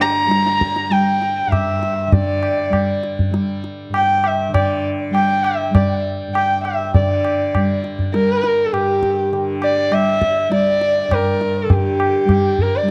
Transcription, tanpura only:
0.00 1.47 G2 medium
0.00 2.07 D3 medium
0.00 0.27 G3 medium
0.27 0.89 G3 medium
0.89 2.69 G3 medium
1.47 3.89 G2 medium
2.07 4.49 D3 medium
2.69 3.30 G3 medium
3.30 5.11 G3 medium
3.89 6.27 G2 medium
4.49 6.94 D3 medium
5.11 5.70 G3 medium
5.70 7.54 G3 medium
6.28 8.72 G2 soft
6.95 9.32 D3 soft
7.54 8.14 G3 medium
8.14 9.91 G3 medium
8.73 11.08 G2 medium
9.32 11.66 D3 medium
9.91 10.49 G3 soft
10.49 12.25 G3 medium
11.08 12.91 G2 soft
11.66 12.91 D3 medium
12.25 12.82 G3 medium
12.82 12.91 G3 medium

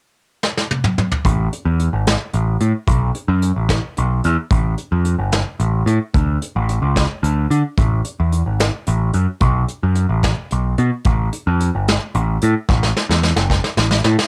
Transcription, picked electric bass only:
1.25 1.47 A1 loud
1.65 1.88 E2 medium
1.93 2.15 G#1 medium
2.34 2.56 A1 medium
2.61 2.72 A2 medium
2.88 3.10 B1 medium
3.28 3.51 F#2 medium
3.56 3.78 A1 medium
3.98 4.20 B1 medium
4.25 4.36 E2 medium
4.51 4.74 A1 loud
4.92 5.14 F2 medium
5.19 5.41 G1 medium
5.60 5.82 A1 medium
5.86 5.98 A2 medium
6.14 6.37 D2 loud
6.56 6.78 A1 medium
6.82 7.05 C#2 medium
7.23 7.46 D2 medium
7.50 7.62 D3 medium
7.78 8.01 A1 medium
8.20 8.42 E2 medium
8.46 8.69 G#1 medium
8.88 9.10 A1 medium
9.14 9.25 F#2 medium
9.41 9.64 B1 loud
9.83 10.05 F#2 medium
10.09 10.32 A1 medium
10.52 10.74 B1 medium
10.78 10.89 B2 loud
11.06 11.28 A1 loud
11.47 11.69 F2 medium
11.75 11.97 G1 medium
12.15 12.37 A1 medium
12.43 12.53 A2 medium
12.69 12.91 A1 loud
13.10 13.32 E2 medium
13.36 13.59 F#1 medium
13.77 14.00 A1 medium
14.05 14.16 A2 medium

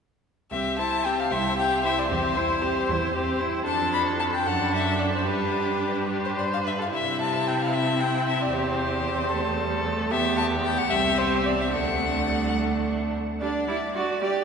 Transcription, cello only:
0.51 1.20 C2 soft
1.32 1.99 C2 soft
2.11 2.77 E2 soft
2.89 3.55 E2 medium
3.67 4.48 F2 soft
4.46 5.29 F#2 soft
5.28 6.73 G2 soft
6.93 8.50 C3 soft
8.55 10.09 E2 soft
10.11 10.89 E2 soft
10.90 11.75 C2 soft
11.74 13.21 D2 soft
13.40 13.66 D4 soft
13.68 13.76 E4 soft
13.94 14.21 F#4 soft
14.22 14.44 G4 soft

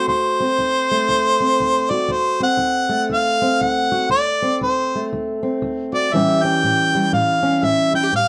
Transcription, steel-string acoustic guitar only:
0.00 0.91 A3 soft
0.00 0.11 C4 medium
0.00 0.43 F#4 medium
0.08 0.55 D2 medium
0.40 1.40 C4 medium
0.59 1.06 D2 medium
0.91 2.89 A3 soft
1.09 1.56 D2 medium
1.40 2.11 C4 medium
1.60 2.07 D2 medium
1.90 2.43 F#4 medium
2.08 2.56 D2 medium
2.40 3.40 C4 medium
2.57 3.05 D2 medium
2.89 4.95 A3 soft
3.10 3.56 D2 medium
3.42 4.09 C4 medium
3.61 4.07 D2 medium
3.92 4.09 F#4 medium
4.09 4.56 D2 medium
4.42 5.42 C4 soft
4.61 5.07 D2 medium
4.95 6.14 A3 soft
5.13 5.58 D2 medium
5.43 6.09 C4 medium
5.62 6.08 D2 medium
5.93 6.09 F#4 medium
6.13 6.58 A2 medium
6.13 8.10 E3 medium
6.13 6.94 G3 medium
6.13 6.44 C#4 medium
6.13 7.93 G4 medium
6.45 7.41 C#4 medium
6.64 7.09 A2 medium
6.95 8.28 G3 medium
7.13 7.58 A2 medium
7.43 8.09 C#4 medium
7.63 8.08 A2 medium
7.94 8.03 E4 medium
8.03 8.12 G4 medium
8.13 8.28 A2 medium

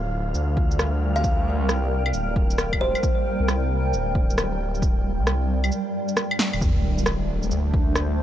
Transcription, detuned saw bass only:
0.00 0.34 D1 medium
0.35 1.63 D2 medium
1.61 2.13 C2 loud
2.14 2.94 D1 medium
3.40 3.94 C2 loud
3.93 5.20 D1 medium
5.19 5.71 C2 loud
6.54 6.61 D1 medium
6.61 7.50 D1 loud
7.51 8.23 D2 medium

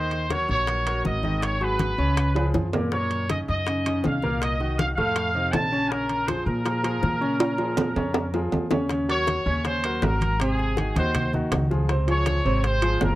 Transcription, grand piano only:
0.00 0.24 D#3 medium
0.00 0.24 D#4 medium
0.00 0.24 D#5 medium
0.30 0.61 F#3 medium
0.30 0.61 F#4 medium
0.30 0.61 A#4 medium
0.68 0.83 F#3 medium
0.68 0.83 F#4 medium
0.68 0.84 A#4 medium
0.86 1.17 F#3 medium
0.86 1.17 F#4 medium
0.86 1.17 A#4 medium
1.24 1.54 D#3 medium
1.24 1.54 D#4 medium
1.24 1.55 D#5 medium
1.61 1.92 F#3 medium
1.61 1.92 F#4 medium
1.61 1.92 G#4 medium
1.98 2.29 C#3 medium
1.98 2.29 C#4 medium
1.98 2.29 C#5 medium
2.35 2.66 F3 medium
2.35 2.66 F4 medium
2.35 2.66 G#4 medium
2.73 2.89 A#2 medium
2.73 2.89 A#3 medium
2.73 2.89 A#4 medium
2.92 3.23 A#2 medium
2.92 3.23 A#3 medium
2.92 3.23 A#4 medium
3.30 3.61 C#3 medium
3.30 3.61 C#4 medium
3.30 3.61 D#4 medium
3.67 3.82 C#3 medium
3.67 3.83 C#4 medium
3.67 3.83 D#4 medium
3.86 4.16 C#3 medium
3.86 4.17 C#4 medium
3.86 4.17 D#4 medium
4.23 4.54 A#2 medium
4.23 4.54 A#3 medium
4.23 4.54 A#4 medium
4.60 4.91 D#3 medium
4.60 4.91 D#4 medium
4.60 4.91 F#4 medium
4.97 5.28 A2 medium
4.97 5.29 A3 medium
4.97 5.29 A4 medium
5.35 5.66 C3 medium
5.35 5.66 C4 medium
5.35 5.66 D#4 medium
5.72 5.87 C#3 medium
5.72 5.88 C#4 medium
5.72 5.88 C#5 medium
5.91 6.21 C#3 medium
5.91 6.22 C#4 medium
5.91 6.22 C#5 medium
6.28 6.59 F3 medium
6.28 6.59 F4 medium
6.28 6.59 G#4 medium
6.65 6.81 F3 medium
6.65 6.81 F4 medium
6.65 6.81 G#4 medium
6.83 7.15 F3 medium
6.83 7.15 F4 medium
6.83 7.15 G#4 medium
7.21 7.52 C#3 medium
7.21 7.52 C#4 medium
7.21 7.52 C#5 medium
7.59 7.90 F3 medium
7.59 7.90 F4 medium
7.59 7.90 G#4 medium
7.96 8.27 C#3 medium
7.96 8.27 C#4 medium
7.96 8.27 C#5 medium
8.34 8.65 F3 medium
8.34 8.65 F4 medium
8.34 8.65 G#4 medium
8.71 8.87 C#3 medium
8.71 8.87 C#4 medium
8.71 8.87 C#5 medium
8.90 9.05 C#3 medium
8.90 9.06 C#4 medium
8.90 9.06 C#5 medium
9.09 9.39 F#3 medium
9.09 9.39 F#4 medium
9.09 9.40 A#4 medium
9.46 9.61 C#3 medium
9.46 9.61 C#4 medium
9.46 9.62 C#5 medium
9.66 9.81 C#3 medium
9.66 9.81 C#4 medium
9.66 9.81 C#5 medium
9.84 9.99 F#3 medium
9.84 10.00 F#4 medium
9.84 10.00 A#4 medium
10.03 10.34 F#3 medium
10.03 10.34 F#4 medium
10.03 10.34 A#4 medium
10.40 10.71 C3 medium
10.40 10.71 C4 medium
10.40 10.71 C5 medium
10.78 10.93 D#3 medium
10.78 10.93 D#4 medium
10.78 10.93 F#4 medium
10.96 11.27 D#3 medium
10.96 11.27 D#4 medium
10.96 11.27 F#4 medium
11.34 11.64 D#3 medium
11.34 11.64 D#4 medium
11.34 11.65 F#4 medium
11.71 11.86 F3 medium
11.71 11.86 F4 medium
11.71 11.86 G#4 medium
11.89 12.05 C3 medium
11.89 12.05 C4 medium
11.89 12.05 C5 medium
12.07 12.38 F3 medium
12.07 12.39 F4 medium
12.07 12.39 G#4 medium
12.45 12.60 C3 medium
12.45 12.61 C4 medium
12.45 12.61 C5 medium
12.63 12.79 C3 medium
12.63 12.79 C4 medium
12.63 12.79 C5 medium
12.82 12.98 F3 medium
12.82 12.98 F4 medium
12.82 12.98 G#4 medium
13.01 13.15 F3 medium
13.01 13.15 F4 medium
13.01 13.15 G#4 medium

